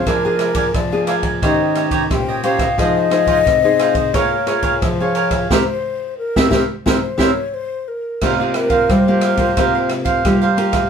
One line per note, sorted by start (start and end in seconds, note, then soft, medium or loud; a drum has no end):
0.07 0.71 F3 medium
0.07 0.18 A#3 medium
0.07 0.23 D4 medium
0.07 0.19 D4 medium
0.07 0.19 G#4 medium
0.07 0.76 A#4 medium
0.07 0.23 A#4 medium
0.07 0.23 D5 medium
0.07 0.23 G#5 medium
0.07 kick medium
0.07 cross-stick medium
0.07 ride soft
0.25 0.87 A#3 medium
0.25 0.87 D4 medium
0.25 0.87 G#4 medium
0.25 0.39 A#4 soft
0.25 0.40 D5 soft
0.25 0.40 G#5 medium
0.39 0.54 D4 soft
0.39 0.54 A#4 soft
0.39 0.54 D5 medium
0.39 0.55 G#5 soft
0.39 cross-stick medium
0.39 ride soft
0.55 0.65 D4 medium
0.55 0.66 A#4 medium
0.55 0.66 D5 medium
0.55 0.66 G#5 medium
0.55 kick medium
0.55 ride medium
0.74 1.39 F3 medium
0.74 1.07 D5 medium
0.74 kick medium
0.74 cross-stick medium
0.74 ride soft
0.92 1.38 A#3 medium
0.92 1.38 D4 medium
0.92 1.38 G#4 medium
1.07 1.23 D4 medium
1.07 1.24 A#4 medium
1.07 1.23 D5 medium
1.07 1.15 F5 medium
1.07 1.22 G#5 medium
1.07 cross-stick medium
1.07 ride soft
1.23 1.41 A#4 soft
1.23 1.41 D5 soft
1.23 1.40 G#5 soft
1.23 kick medium
1.23 ride soft
1.42 2.08 D#3 medium
1.42 2.05 C#4 medium
1.42 1.74 D#4 medium
1.42 1.75 G4 medium
1.42 2.06 G4 medium
1.42 2.06 C5 medium
1.42 1.75 C#5 medium
1.42 1.81 D#5 medium
1.42 1.76 D#5 medium
1.42 kick medium
1.42 cross-stick medium
1.42 ride soft
1.75 1.90 D#4 soft
1.75 1.91 G4 soft
1.75 1.91 C#5 medium
1.75 1.91 D#5 medium
1.75 cross-stick medium
1.75 ride soft
1.91 2.02 D#4 medium
1.91 2.02 G4 medium
1.91 2.02 C#5 medium
1.91 2.02 D#5 medium
1.91 kick medium
1.91 ride soft
2.10 2.75 A#2 medium
2.10 2.39 C#4 medium
2.10 2.39 G4 medium
2.10 2.40 C5 medium
2.10 2.46 G5 loud
2.10 kick medium
2.10 cross-stick medium
2.10 ride soft
2.28 2.43 G4 soft
2.28 2.43 C#5 soft
2.28 2.44 D#5 medium
2.43 2.66 C#4 soft
2.43 2.60 D#4 medium
2.43 2.66 G4 medium
2.43 2.59 G4 medium
2.43 2.66 C5 medium
2.43 2.58 C#5 medium
2.43 2.58 D#5 medium
2.43 2.81 F5 medium
2.43 ride soft
2.59 2.77 G4 soft
2.59 2.76 C#5 soft
2.59 2.76 D#5 soft
2.59 kick medium
2.59 cross-stick medium
2.59 ride soft
2.78 3.43 F3 medium
2.78 3.07 D#4 medium
2.78 2.94 F4 medium
2.78 3.07 G#4 medium
2.78 2.95 G#4 medium
2.78 3.07 C5 medium
2.78 2.95 C5 medium
2.78 4.16 D#5 loud
2.78 2.95 D#5 medium
2.78 kick medium
2.78 cross-stick medium
2.78 ride soft
2.97 3.11 G#4 soft
2.97 3.11 C5 soft
2.97 3.12 D#5 soft
3.10 3.57 D#4 medium
3.10 3.26 F4 soft
3.10 3.57 G#4 medium
3.10 3.27 G#4 soft
3.10 3.58 C5 medium
3.10 3.27 C5 medium
3.10 3.27 D#5 soft
3.10 cross-stick medium
3.10 ride soft
3.27 3.38 F4 medium
3.27 3.38 G#4 medium
3.27 3.38 C5 medium
3.27 3.38 D#5 medium
3.27 kick medium
3.27 ride soft
3.46 4.11 C3 medium
3.46 kick medium
3.46 cross-stick medium
3.46 ride soft
3.64 4.10 D#4 medium
3.64 4.10 G#4 medium
3.64 4.10 C5 medium
3.79 3.96 F4 medium
3.79 3.95 G#4 medium
3.79 3.95 C5 medium
3.79 3.94 D#5 medium
3.79 cross-stick medium
3.79 ride soft
3.95 4.13 G#4 soft
3.95 4.13 C5 soft
3.95 4.12 D#5 medium
3.95 kick medium
3.95 ride soft
4.14 4.79 A#3 medium
4.14 4.34 F4 soft
4.14 4.35 G#4 medium
4.14 4.46 A#4 medium
4.14 4.84 C#5 medium
4.14 4.35 C#5 medium
4.14 4.47 C#5 medium
4.14 4.47 F5 medium
4.14 4.48 G#5 medium
4.14 kick medium
4.14 cross-stick medium
4.14 ride medium
4.46 4.93 F4 medium
4.46 4.93 G#4 medium
4.46 4.62 A#4 soft
4.46 4.94 C#5 medium
4.46 4.62 C#5 medium
4.46 4.62 F5 soft
4.46 4.63 G#5 medium
4.46 cross-stick medium
4.46 ride soft
4.63 4.73 A#4 medium
4.63 4.74 C#5 medium
4.63 4.74 F5 medium
4.63 4.74 G#5 medium
4.63 kick medium
4.63 ride soft
4.81 5.47 F3 medium
4.81 5.18 C5 medium
4.81 kick medium
4.81 cross-stick medium
4.81 ride soft
5.00 5.46 F4 medium
5.00 5.46 G#4 medium
5.00 5.46 C#5 medium
5.00 5.15 C#5 soft
5.00 5.15 F5 soft
5.00 5.16 G#5 soft
5.15 5.32 A#4 medium
5.15 5.50 C#5 medium
5.15 5.32 C#5 medium
5.15 5.31 F5 medium
5.15 5.30 G#5 medium
5.15 ride soft
5.31 5.49 C#5 soft
5.31 5.49 F5 soft
5.31 5.48 G#5 soft
5.31 kick medium
5.31 cross-stick medium
5.31 ride soft
5.50 5.62 C4 loud
5.50 5.62 E4 loud
5.50 5.62 G4 loud
5.50 5.62 A#4 medium
5.50 6.15 C5 medium
5.50 5.62 C5 medium
5.50 5.62 E5 medium
5.50 kick medium
5.50 snare medium
6.18 6.56 A#4 medium
6.36 6.47 C4 loud
6.36 6.47 E4 medium
6.36 6.47 G4 loud
6.36 6.47 A#4 medium
6.36 6.47 C5 medium
6.36 6.47 E5 medium
6.36 kick medium
6.36 snare medium
6.50 6.62 C4 medium
6.50 6.62 E4 medium
6.50 6.62 G4 medium
6.50 6.63 A#4 medium
6.50 6.63 C5 medium
6.50 6.63 E5 medium
6.50 kick medium
6.50 snare medium
6.86 6.97 C4 medium
6.86 6.97 E4 medium
6.86 6.97 G4 medium
6.86 6.98 A#4 medium
6.86 7.21 C5 medium
6.86 6.98 C5 medium
6.86 6.98 E5 medium
6.86 kick medium
6.86 snare medium
7.18 7.30 C4 medium
7.18 7.30 E4 medium
7.18 7.30 G4 medium
7.18 7.30 A#4 medium
7.18 7.30 C5 medium
7.18 7.55 C#5 medium
7.18 7.30 E5 medium
7.18 kick medium
7.18 snare medium
7.54 7.90 C5 medium
7.88 8.22 A#4 medium
8.21 8.86 C3 medium
8.21 8.34 A#3 medium
8.21 8.38 F4 medium
8.21 8.34 F4 medium
8.21 8.34 G4 medium
8.21 8.38 A#4 medium
8.21 8.38 C5 medium
8.21 8.39 F5 medium
8.21 kick medium
8.21 cross-stick medium
8.21 crash medium
8.40 9.02 A#3 medium
8.40 9.02 F4 medium
8.40 9.02 G4 medium
8.40 8.54 A#4 soft
8.40 8.54 C5 soft
8.40 8.54 F5 soft
8.54 8.92 A#4 medium
8.54 muted cavaquinho stroke soft
8.54 cross-stick medium
8.54 ride soft
8.70 9.05 A#4 medium
8.70 9.05 C5 medium
8.70 9.04 F5 medium
8.70 kick medium
8.70 ride soft
8.89 9.54 G3 medium
8.89 9.92 C5 medium
8.89 kick medium
8.89 cross-stick medium
8.89 ride soft
9.07 9.36 A#3 medium
9.07 9.36 F4 medium
9.07 9.36 G4 medium
9.07 9.22 A#4 soft
9.07 9.22 C5 soft
9.07 9.22 F5 soft
9.21 9.39 F4 soft
9.21 9.38 A#4 medium
9.21 9.38 C5 soft
9.21 9.37 F5 medium
9.21 cross-stick medium
9.21 ride soft
9.37 9.51 A#3 medium
9.37 9.51 F4 medium
9.37 9.51 G4 medium
9.37 9.56 A#4 soft
9.37 9.55 C5 medium
9.37 9.55 F5 medium
9.37 kick medium
9.37 ride soft
9.57 10.22 C3 medium
9.57 10.20 A#3 medium
9.57 9.73 F4 medium
9.57 10.20 F4 medium
9.57 10.20 G4 medium
9.57 9.73 A#4 medium
9.57 9.73 C5 medium
9.57 9.74 F5 medium
9.57 kick medium
9.57 cross-stick medium
9.57 ride medium
9.75 9.89 A#4 soft
9.75 9.89 C5 soft
9.75 9.89 F5 medium
9.89 muted cavaquinho stroke soft
9.89 cross-stick medium
9.89 ride soft
10.05 10.40 A#4 medium
10.05 10.40 C5 medium
10.05 10.39 F5 medium
10.05 kick medium
10.05 ride soft
10.25 10.89 G3 medium
10.25 10.45 A#3 medium
10.25 10.45 F4 medium
10.25 10.45 G4 medium
10.25 kick medium
10.25 cross-stick medium
10.25 ride soft
10.42 10.56 A#4 medium
10.42 10.57 C5 medium
10.42 10.58 F5 medium
10.57 10.80 A#3 medium
10.57 10.74 F4 soft
10.57 10.80 F4 medium
10.57 10.80 G4 medium
10.57 10.73 A#4 soft
10.57 10.72 C5 soft
10.57 10.71 F5 soft
10.57 ride soft
10.72 10.90 A#4 soft
10.72 10.90 C5 soft
10.72 10.90 F5 soft
10.72 kick medium
10.72 cross-stick medium
10.72 ride medium